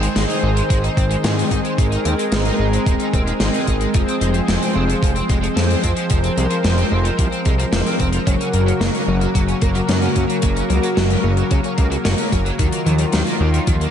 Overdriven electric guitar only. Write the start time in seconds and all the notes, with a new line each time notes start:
0.02 G#3
0.16 G#3
0.29 D#4
0.43 D#4
0.56 G#3
0.70 G#3
0.84 D#4
0.97 C4
1.11 G#3
1.24 G#3
1.38 D#4
1.51 D#4
1.65 G#3
1.78 G#3
1.92 D#4
2.06 C4
2.19 G#3
2.33 G#3
2.46 D#4
2.60 D#4
2.73 G#3
2.87 G#3
3.00 D#4
3.14 C4
3.27 G#3
3.40 G#3
3.54 D#4
3.68 D#4
3.81 G#3
3.95 F3
4.08 C4
4.22 G#3
4.35 F3
4.49 F3
4.62 C4
4.76 C4
4.89 F3
5.03 F3
5.16 C4
5.30 G#3
5.43 F3
5.57 F3
5.70 C4
5.84 C4
5.97 F3
6.11 F3
6.24 C4
6.38 G#3
6.51 F3
6.65 F3
6.78 C4
6.92 C4
7.05 F3
7.19 F3
7.33 C4
7.46 G#3
7.59 F3
7.73 F3
7.87 C4
8.00 C4
8.14 F3
8.27 F#3
8.41 C#4
8.54 A#3
8.68 F#3
8.81 F#3
8.95 C#4
9.08 C#4
9.22 F#3
9.35 F#3
9.49 C#4
9.62 A#3
9.76 F#3
9.89 F#3
10.03 C#4
10.16 C#4
10.29 F#3
10.43 F#3
10.56 C#4
10.70 A#3
10.84 F#3
10.97 F#3
11.11 C#4
11.24 C#4
11.38 F#3
11.51 F#3
11.65 C#4
11.78 A#3
11.91 F#3
12.05 F#3
12.19 C#4
12.32 C#4
12.46 F#3
12.59 D#3
12.73 A#3
12.86 F#3
13.00 D#3
13.13 D#3
13.27 A#3
13.40 A#3
13.54 D#3
13.67 D#3
13.81 A#3